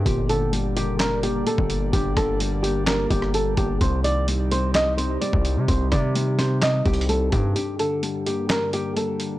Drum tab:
HH |x-----x-----x-----x-----x-----x-----x-----x-----|x-----x-----x-----x-----x-----x-----x-----x-----|x-----x-----x-----x-----x-----x-----x-----x-----|x-----x-----x-----x-----x-----x-x-x-x-----x-----|
CP |------------------------x-----------------------|------------------------x-----------------------|------------------------x-----------------------|------------------------x-----------------------|
SD |------------------------o-----------------------|------r-----------------o--------r--------------|------------------------o-----------------------|------r-----------o-----o-----------------------|
BD |o--------------------------------------o--------|o-----o-----------------------o-----------o-----|o--------------------------------------o--------|o-----o-----------------------o-----------o-----|

HH |x-----x-----x-----x-----x-----x-----x-----x-----|
CP |------------------------x-----------------------|
SD |------------------------o-----------------------|
BD |------------------------------------------------|